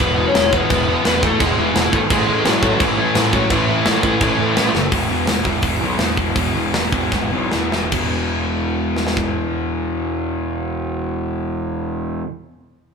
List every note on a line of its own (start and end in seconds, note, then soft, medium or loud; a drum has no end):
0.00 0.24 E1 loud
0.00 0.16 E2 loud
0.00 0.16 B2 loud
0.00 0.18 E3 loud
0.00 0.24 B3 medium
0.00 0.29 B4 loud
0.17 0.34 E2 loud
0.17 0.34 B2 loud
0.17 0.35 E3 loud
0.28 0.52 C#4 loud
0.28 0.52 C#5 loud
0.35 0.59 E1 medium
0.35 0.51 E2 medium
0.35 0.52 B2 loud
0.35 0.53 E3 loud
0.35 snare loud
0.35 crash medium
0.52 0.68 E2 medium
0.52 0.69 B2 medium
0.52 0.70 E3 loud
0.52 1.02 B3 medium
0.52 1.02 B4 loud
0.52 kick medium
0.69 0.95 E1 loud
0.69 0.86 E2 loud
0.69 0.86 B2 loud
0.69 0.87 E3 loud
0.69 kick loud
0.69 crash medium
0.87 1.03 E2 medium
0.87 1.04 B2 medium
0.87 1.05 E3 loud
1.04 1.30 E1 loud
1.04 1.20 E2 loud
1.04 1.21 B2 loud
1.04 1.22 E3 loud
1.04 1.22 B3 medium
1.04 1.24 B4 loud
1.04 snare loud
1.04 crash medium
1.22 1.38 E2 loud
1.22 1.39 B2 medium
1.22 1.40 E3 loud
1.22 1.40 A3 medium
1.22 1.41 A4 loud
1.22 kick loud
1.39 1.52 E1 loud
1.39 1.56 E2 loud
1.39 1.56 B2 loud
1.39 1.57 E3 loud
1.39 1.57 G#3 medium
1.39 1.59 G#4 loud
1.39 kick loud
1.39 crash medium
1.57 1.70 E1 loud
1.57 1.73 E2 loud
1.57 1.74 B2 loud
1.57 1.75 E3 loud
1.57 1.91 E3 medium
1.57 1.95 E4 medium
1.74 1.87 E1 medium
1.74 1.91 E2 loud
1.74 1.92 B2 loud
1.74 1.92 E3 loud
1.74 snare loud
1.74 crash medium
1.92 2.05 G#1 medium
1.92 2.09 E2 medium
1.92 2.09 B2 medium
1.92 2.10 E3 loud
1.92 1.99 A3 medium
1.92 1.99 A4 medium
1.92 kick loud
2.10 2.23 A1 loud
2.10 2.26 A2 loud
2.10 2.27 E3 loud
2.10 2.44 G#3 medium
2.10 2.27 A3 loud
2.10 2.47 G#4 medium
2.10 kick loud
2.10 crash medium
2.26 2.40 A1 medium
2.26 2.45 A2 loud
2.26 2.46 E3 loud
2.26 2.46 A3 loud
2.45 2.57 A1 medium
2.45 2.62 A2 loud
2.45 2.63 E3 loud
2.45 2.62 F#3 medium
2.45 2.63 A3 loud
2.45 2.62 F#4 loud
2.45 snare loud
2.45 crash medium
2.62 2.75 A1 loud
2.62 2.79 A2 medium
2.62 2.81 E3 loud
2.62 2.80 F#3 medium
2.62 2.80 A3 loud
2.62 2.81 F#4 medium
2.62 kick loud
2.80 3.05 A1 loud
2.80 2.97 A2 loud
2.80 2.98 E3 loud
2.80 2.97 E3 medium
2.80 2.97 A3 loud
2.80 2.97 E4 loud
2.80 kick loud
2.80 crash medium
2.98 3.14 A2 loud
2.98 3.15 E3 medium
2.98 3.31 E3 medium
2.98 3.15 A3 loud
2.98 3.33 E4 medium
3.15 3.40 A1 loud
3.15 3.32 A2 loud
3.15 3.33 E3 loud
3.15 3.33 A3 loud
3.15 snare loud
3.15 crash medium
3.33 3.49 A2 medium
3.33 3.50 E3 loud
3.33 3.50 F#3 medium
3.33 3.50 A3 medium
3.33 3.51 F#4 medium
3.33 kick loud
3.50 3.75 A1 loud
3.50 3.68 A2 loud
3.50 3.68 E3 loud
3.50 4.00 E3 medium
3.50 3.69 A3 loud
3.50 4.03 E4 medium
3.50 kick loud
3.50 crash medium
3.69 3.85 A2 medium
3.69 3.85 E3 medium
3.69 3.85 A3 loud
3.85 4.11 A1 medium
3.85 4.02 A2 loud
3.85 4.03 E3 loud
3.85 4.03 A3 loud
3.85 snare loud
3.85 crash medium
4.03 4.20 A2 medium
4.03 4.20 E3 loud
4.03 4.70 E3 medium
4.03 4.21 A3 loud
4.03 4.70 E4 medium
4.03 kick medium
4.21 4.33 A1 loud
4.21 4.37 A2 loud
4.21 4.38 E3 loud
4.21 4.38 A3 loud
4.21 kick loud
4.21 crash medium
4.38 4.52 A1 medium
4.38 4.55 A2 loud
4.38 4.56 E3 medium
4.38 4.56 A3 loud
4.57 4.69 A1 loud
4.57 4.73 A2 loud
4.57 4.74 E3 loud
4.57 4.74 A3 loud
4.57 snare loud
4.57 crash medium
4.75 4.87 F#1 medium
4.75 4.91 A2 medium
4.75 4.91 E3 medium
4.75 4.91 A3 loud
4.75 snare medium
4.92 5.08 E1 medium
4.92 5.08 E2 medium
4.92 5.08 B2 loud
4.92 5.10 E3 loud
4.92 kick loud
4.92 open hi-hat medium
5.09 5.26 E1 medium
5.09 5.26 E2 medium
5.09 5.26 B2 medium
5.09 5.27 E3 medium
5.27 5.44 E1 medium
5.27 5.44 E2 medium
5.27 5.44 B2 medium
5.27 5.45 E3 loud
5.27 snare loud
5.27 open hi-hat medium
5.45 5.61 E1 medium
5.45 5.62 E2 medium
5.45 5.62 B2 medium
5.45 5.63 E3 medium
5.45 kick medium
5.62 5.79 E1 medium
5.62 5.80 E2 medium
5.62 5.80 B2 medium
5.62 5.81 E3 medium
5.62 kick loud
5.62 open hi-hat medium
5.81 5.97 B1 medium
5.81 5.98 E2 loud
5.81 5.98 B2 medium
5.81 5.99 E3 loud
5.99 6.17 E2 loud
5.99 6.15 E2 medium
5.99 6.17 B2 loud
5.99 6.18 E3 loud
5.99 snare loud
5.99 open hi-hat medium
6.17 6.34 E1 medium
6.17 6.35 E2 medium
6.17 6.35 B2 medium
6.17 6.36 E3 medium
6.17 kick medium
6.36 6.52 E1 medium
6.36 6.54 E2 loud
6.36 6.54 B2 medium
6.36 6.54 E3 loud
6.36 kick loud
6.36 open hi-hat medium
6.55 6.72 E1 medium
6.55 6.73 E2 medium
6.55 6.73 B2 medium
6.55 6.74 E3 medium
6.74 6.91 E1 medium
6.74 6.92 E2 medium
6.74 6.92 B2 medium
6.74 6.93 E3 loud
6.74 snare loud
6.74 open hi-hat medium
6.92 7.10 E1 medium
6.92 7.11 E2 medium
6.92 7.11 B2 medium
6.92 7.12 E3 medium
6.92 kick medium
7.12 7.30 E1 medium
7.12 7.31 E2 medium
7.12 7.31 B2 medium
7.12 7.31 E3 loud
7.12 kick loud
7.12 snare medium
7.32 7.50 B1 medium
7.32 7.50 E2 medium
7.32 7.51 B2 medium
7.32 7.51 E3 medium
7.51 7.70 E2 medium
7.51 7.71 B2 loud
7.51 7.71 E3 loud
7.51 snare medium
7.71 7.90 E1 medium
7.71 7.90 E2 medium
7.71 7.91 B2 medium
7.71 7.91 E3 medium
7.71 snare medium
7.91 12.21 E1 medium
7.91 12.24 E2 medium
7.91 12.26 B2 loud
7.91 12.28 E3 loud
7.91 kick medium
7.91 crash medium
8.96 snare medium
9.07 snare medium
9.17 kick medium